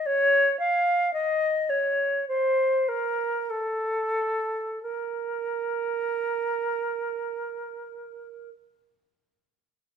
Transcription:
\new Staff \with { instrumentName = "Flute" } { \time 4/4 \key bes \minor \tempo 4 = 47 des''8 f''8 ees''8 des''8 c''8 bes'8 a'4 | bes'1 | }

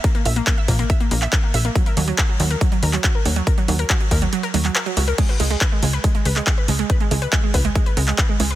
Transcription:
<<
  \new Staff \with { instrumentName = "Synth arpeggio sound" } { \clef bass \time 4/4 \key dis \phrygian \tempo 4 = 140 ais16 ais16 e''16 ais16 ais16 e''16 ais16 ais16 e''16 ais16 ais16 e''16 ais16 ais16 e''16 ais16 | fis16 ais'16 fis16 fis16 ais'16 fis16 fis16 ais'16 fis16 fis16 ais'16 fis16 fis16 ais'16 fis16 fis16 | ais'16 fis16 fis16 ais'16 fis16 fis16 ais'16 fis16 fis16 ais'16 fis16 fis16 ais'16 fis16 fis16 ais'16 | gis16 b'16 gis16 gis16 b'16 gis16 gis16 b'16 gis16 gis16 b'16 gis16 gis16 b'16 gis16 gis16 |
b'16 gis16 gis16 b'16 gis16 gis16 b'16 gis16 gis16 b'16 gis16 gis16 b'16 gis16 gis16 b'16 | }
  \new Staff \with { instrumentName = "Analog synth bass" } { \clef bass \time 4/4 \key dis \phrygian r8 ais,,8 r8 ais,,8 r8 ais,,8 r8 ais,,8 | r8 dis,8 r8 dis,8 r8 dis,8 r8 dis,8 | r8 dis,8 r8 dis,8 r8 dis,8 r8 cis,8 | r8 cis,8 r8 cis,8 r8 cis,8 r8 cis,8 |
r8 cis,8 r8 cis,8 r8 cis,8 r8 cis,8 | }
  \new DrumStaff \with { instrumentName = "Drums" } \drummode { \time 4/4 <hh bd>16 hh16 hho16 hh16 <hc hh bd>8 <hho bd>16 hh16 <hh bd>16 hh16 hho16 <hc hh>16 <hc hh bd>8 hho16 hh16 | <hh bd>16 hh16 hho16 hh16 <hc hh bd>8 hho16 hh16 <hh bd>16 hh16 hho16 <hc hh>16 <hc hh bd>8 hho16 hh16 | <hh bd>16 hh16 hho16 hh16 <hc hh bd>16 hh16 <hho bd>16 hh16 hh16 hh16 hho16 <hc hh>16 <hc hh>16 hh16 hho16 hh16 | <cymc hh bd>16 hh16 hho16 hh16 <hc hh bd>8 hho16 hh16 <hh bd>16 hh16 hho16 <hc hh>16 <hc hh bd>8 hho16 hh16 |
<hh bd>16 hh16 hho16 hh16 <hc hh bd>8 <hho bd>16 hh16 <hh bd>16 hh16 hho16 <hc hh>16 <hc hh bd>8 hho16 hh16 | }
>>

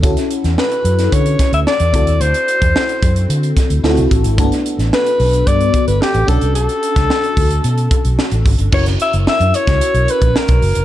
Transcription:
<<
  \new Staff \with { instrumentName = "Alto saxophone" } { \time 4/4 \key d \major \tempo 4 = 110 r4 b'4 cis''8. e''16 d''4 | c''2 r2 | r4 b'4 d''8. b'16 g'8 a'8 | a'2. r4 |
cis''8 e''8 e''8 cis''4 b'8 ais'4 | }
  \new Staff \with { instrumentName = "FM electric piano" } { \time 4/4 \key d \major <cis' e' fis' a'>2.~ <cis' e' fis' a'>8 <c' e' fis' a'>8~ | <c' e' fis' a'>2. <c' e' f' fis' a'>4 | <a b d' fis' a'>2.~ <a b d' fis' a'>8 <cis' d' fis' a'>8~ | <cis' d' fis' a'>2.~ <cis' d' fis' a'>8 r8 |
<cis' e' fis' ais'>1 | }
  \new Staff \with { instrumentName = "Fingered electric bass" } { \clef bass \time 4/4 \key d \major d,16 r8 e,16 r8 fis,8 d8 r16 d,16 r16 e,16 d,16 ees,16 | d,16 r8 e,16 r8 fis,8 d8 r16 d,16 d,16 c,16 a,,16 gis,,16 | g,,16 r8 a,,16 r8 b,,8 g,8 r16 g,,16 r16 a,,16 b,,16 c,16 | b,,16 r8 cis,16 r8 d,8 b,8 r16 b,,16 r16 a,,16 gis,,16 g,,16 |
fis,,8 r16 fis,,16 r16 fis,16 r16 cis,16 r16 b,,16 r16 ais,,16 r16 b,,16 fis,,16 f,,16 | }
  \new DrumStaff \with { instrumentName = "Drums" } \drummode { \time 4/4 <hh bd>16 <hh sn>16 hh16 <hh sn>16 sn16 hh16 hh16 <hh sn>16 <hh bd>16 hh16 <hh bd sn>16 hh16 sn16 hh16 <hh bd>16 hh16 | hh16 hh16 hh16 <hh bd>16 sn16 hh16 <hh bd>16 hh16 hh16 hh16 <hh bd sn>16 hh16 sn16 hh16 <hh bd>16 hh16 | <hh bd>16 <hh sn>16 hh16 <hh sn>16 sn16 hh16 hho16 hh16 <hh bd>16 hh16 <hh bd>16 hh16 sn16 hh16 <hh bd>16 hh16 | hh16 hh16 hh16 <hh bd sn>16 sn16 hh16 <hho bd>16 hh16 hh16 hh16 <hh bd>16 hh16 sn16 hh16 <hho bd>16 hh16 |
<cymc bd>16 <hh sn>16 hh16 hh16 sn16 hh16 hh16 <hh bd sn>16 hh16 hh16 hh16 <hh bd>16 sn16 <hh bd>16 hho16 hh16 | }
>>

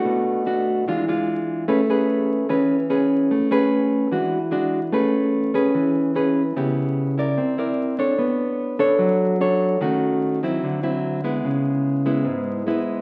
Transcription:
\new Staff \with { instrumentName = "Nylon-string guitar" } { \time 4/4 \key a \major \tempo 4 = 148 << { <a d' fis'>4 <a d' fis'>4 <gis d' f'>8 <gis d' f'>4. | <cis' gis' b'>8 <cis' gis' b'>4. <cis' gis' b'>8 r8 <cis' gis' b'>4~ | <cis' gis' b'>8 <cis' gis' b'>4. <gis d' fis'>8 r8 <gis d' fis'>8 r8 | <cis' gis' b'>4. <cis' gis' b'>4. <cis' gis' b'>8 r8 |
<b e' g'>4. <e' bes' d''>4 <e' bes' d''>4 <d' a' cis''>8~ | <d' a' cis''>4. <d' a' cis''>4. <d' a' cis''>4 | <a cis' fis'>4. <fis c' e'>4 <fis c' e'>4 <gis b e'>8~ | <gis b e'>4. <gis b e'>4. <gis b e'>4 | } \\ { b,2 e2 | a2 e2 | a2 e2 | a2 e2 |
cis2 c'2 | b2 fis2 | dis2 d2 | cis2 gis,2 | } >> }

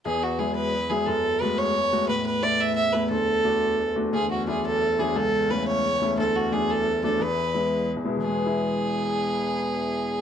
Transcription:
<<
  \new Staff \with { instrumentName = "Fiddle" } { \time 6/8 \key e \mixolydian \tempo 4. = 117 gis'8 fis'8 gis'8 b'4 gis'8 | a'4 b'8 cis''4. | b'8 b'8 d''8 e''8 e''8 b'8 | a'2~ a'8 r8 |
gis'8 fis'8 gis'8 a'4 gis'8 | a'4 b'8 cis''4. | a'8 fis'8 gis'8 a'4 a'8 | b'2 r4 |
gis'2.~ | gis'2. | }
  \new Staff \with { instrumentName = "Upright piano" } { \time 6/8 \key e \mixolydian e,4 <fis gis e'>4 r8 <fis gis e'>8 | fis,4 <gis a fis'>4 r8 <gis a fis'>8 | a,4 <a b e'>4 r8 <a b e'>8 | d,4 <a d' fis'>4 r8 <a d' fis'>8 |
d,4 <fis d' e'>4 r8 <fis d' e'>8 | cis,4 <a cis' e'>4 r8 <a cis' e'>8 | d,4 <fis a d'>4 r8 <fis a d'>8 | e,4 <gis b e'>4 r8 <gis b e'>8 |
<e, b, e gis b e'>2.~ | <e, b, e gis b e'>2. | }
  \new Staff \with { instrumentName = "Harmonium" } { \clef bass \time 6/8 \key e \mixolydian <e, e>2.~ | <e, e>2.~ | <e, e>2.~ | <e, e>2. |
<e, e>2.~ | <e, e>2.~ | <e, e>2.~ | <e, e>2. |
<e, e>2.~ | <e, e>2. | }
>>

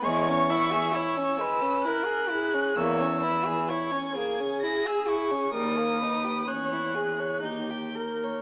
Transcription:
<<
  \new Staff \with { instrumentName = "Violin" } { \time 3/4 \key cis \dorian \tempo 4 = 65 cis'''4 e'''4 fis'''4 | e'''4 gis'''4 ais'''16 e'''16 cis'''8 | dis'''4 fis'''4 g'''4 | }
  \new Staff \with { instrumentName = "Viola" } { \time 3/4 \key cis \dorian cis''8 e''8 cis''8 b'8 ais'8 gis'8 | cis''8 b'8 cis''8 gis'4. | ais'8 b'8 cis''8 gis'8 g'8 ais'8 | }
  \new Staff \with { instrumentName = "Violin" } { \time 3/4 \key cis \dorian gis16 cis'16 e'16 gis'16 e'16 cis'16 gis16 cis'16 e'16 gis'16 e'16 cis'16 | ais16 cis'16 e'16 gis'16 e'16 cis'16 ais16 cis'16 e'16 gis'16 e'16 cis'16 | g16 ais16 dis'16 g'16 cis'16 e'16 gis'16 cis''16 dis'16 g'16 ais'16 cis''16 | }
  \new Staff \with { instrumentName = "Cello" } { \clef bass \time 3/4 \key cis \dorian e,4 r2 | e,4 r2 | dis,4 e,4 dis,4 | }
>>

